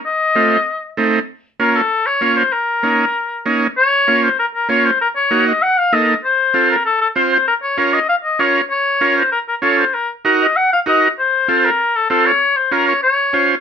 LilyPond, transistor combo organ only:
\new Staff \with { instrumentName = "Transistor combo organ" } { \time 4/4 \key bes \minor \tempo 4 = 194 r4 <a c' f'>8 r4. <a c' ees'>8 r8 | r4 <bes des' f'>8 r4. <bes des' f'>8 r8 | r4 <bes des' ees'>8 r4. <bes des' ees'>8 r8 | r4 <bes des' f'>8 r4. <bes des' f'>8 r8 |
r4 <bes ees' ges'>8 r4. <bes ees' a'>8 r8 | r4 <c' f' a'>8 r4. <c' f' c''>8 r8 | r4 <des' f' bes'>8 r4. <des' f' bes'>8 r8 | r4 <des' f' bes'>8 r4. <des' f' a'>8 r8 |
r4 <ees' ges' bes'>8 r4. <ees' ges' bes'>8 r8 | r4 <c' f' a'>8 r4. <c' f' a'>8 r8 | r4 <des' f' bes'>8 r4. <des' f' c''>8 r8 | }